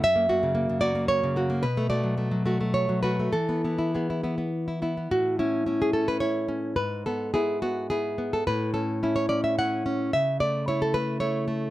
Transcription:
\new Staff \with { instrumentName = "Nylon-string guitar" } { \time 3/4 \key a \major \tempo 4 = 108 << { e''4. d''8 cis''4 | b'8 d''4. cis''8 b'8 | a'4 gis'4 r4 | fis'8 e'8. gis'16 a'16 b'16 cis''4 |
b'8 a'8 gis'8 fis'8 gis'8. a'16 | b'8 a'8. cis''16 d''16 e''16 fis''4 | e''8 d''8 cis''16 a'16 b'8 cis''4 | } \\ { fis,16 ais16 <ais fis'>16 cis16 ais16 cis16 <ais fis'>16 ais8 cis16 <ais fis'>16 ais16 | b,16 a16 <a fis'>16 fis16 a16 fis16 <a fis'>16 a8 fis16 <a fis'>16 a16 | e16 b16 <b e'>16 e'16 b16 e'16 <b e'>16 b8 e'16 <b e'>16 b16 | a,8 cis'8 <cis' e'>8 cis'8 <cis' e'>8 cis'8 |
gis,8 b8 <b e'>8 b8 <b e'>8 b8 | a,8 cis'8 <cis' e'>8 cis'8 <cis' e'>8 cis'8 | cis8 a8 <a e'>8 a8 <a e'>8 a8 | } >> }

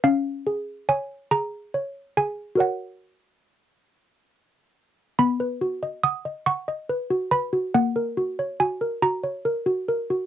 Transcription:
\new Staff \with { instrumentName = "Handbells" } { \time 6/8 \key fis \major \tempo 4. = 47 << { eis''4 gis''8 ais''4 gis''8 | fis''2~ fis''8 r8 | b''4 dis'''8 cis'''4 b''8 | fis''4 gis''8 ais''4. | } \\ { cis'8 gis'8 cis''8 gis'8 cis''8 gis'8 | <fis' ais' cis''>2. | b16 b'16 fis'16 dis''16 fis''16 dis''16 fis''16 dis''16 b'16 fis'16 b'16 fis'16 | ais16 ais'16 fis'16 cis''16 fis'16 ais'16 fis'16 cis''16 ais'16 fis'16 ais'16 fis'16 | } >> }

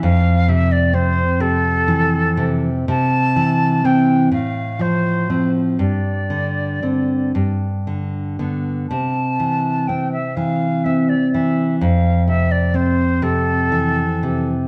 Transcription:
<<
  \new Staff \with { instrumentName = "Flute" } { \time 6/8 \key c \major \tempo 4. = 41 f''8 e''16 d''16 c''8 a'4. | a''4 g''8 f''8 c''8. r16 | d''4. r4. | a''4 g''16 e''16 f''8 e''16 d''16 e''8 |
f''8 e''16 d''16 c''8 a'4. | }
  \new Staff \with { instrumentName = "Nylon-string guitar" } { \clef bass \time 6/8 \key c \major f,8 c8 c'8 c8 e8 c8 | c8 e8 <e c'>8 a,8 f8 <f c'>8 | g,8 d8 <d c'>8 g,8 d8 <d b>8 | c8 e8 c'8 e8 c'8 e8 |
f,8 c8 c'8 c8 e8 c8 | }
>>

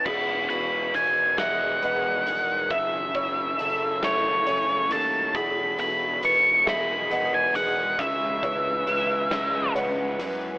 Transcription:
<<
  \new Staff \with { instrumentName = "Lead electric guitar" } { \time 6/8 \key e \major \tempo 4. = 45 b''8 b''8 gis''8 fis''4. | e''4. cis''4 a''8 | b''8 b''8 cis'''8 b''8. gis''16 fis''8 | e''2 r4 | }
  \new Staff \with { instrumentName = "Felt piano" } { \time 6/8 \key e \major gis'4 b'8 e''8 dis''4 | e''8 cis''8 a'4 cis''8 a'8 | gis'4 b'8 e''8 dis''4 | e''8 cis''8 b'4 cis''8 b'8 | }
  \new Staff \with { instrumentName = "Ambient pad" } { \time 6/8 \key e \major << { <dis gis'>2. | <e' a'>2. | <dis gis'>2. | <cis' b'>2. | } \\ { r2. | fis2. | gis2.~ | gis2. | } >> }
  \new Staff \with { instrumentName = "Clean electric guitar" } { \clef bass \time 6/8 \key e \major e,8 b,8 dis8 gis8 b8 dis8 | fis,8 cis4 a8 cis'4 | e,8 b,8 dis8 gis8 b8 dis8 | cis8 e8 e8 gis8 b8 e8 | }
  \new Staff \with { instrumentName = "Picked electric bass" } { \clef bass \time 6/8 \key e \major e,,8 e,,8 e,,8 e,,8 e,,8 e,,8 | fis,,8 fis,,8 fis,,8 fis,,8 fis,,8 dis,8 | e,,8 e,,8 e,,8 e,,8 e,,8 e,,8 | cis,8 cis,8 cis,8 cis,8 cis,8 fis,8 | }
  \new DrumStaff \with { instrumentName = "Drums" } \drummode { \time 6/8 <cymc bd>8 hh8 hh8 <hh sn>8 hh8 hh8 | <hh bd>8 <hh bd>8 hh8 <hh sn>8 hh8 hh8 | <hh bd>8 hh8 hh8 <hh sn>8 hh8 hh8 | <hh bd>8 <hh bd>8 hh8 <hh sn>8 hh8 hh8 | }
>>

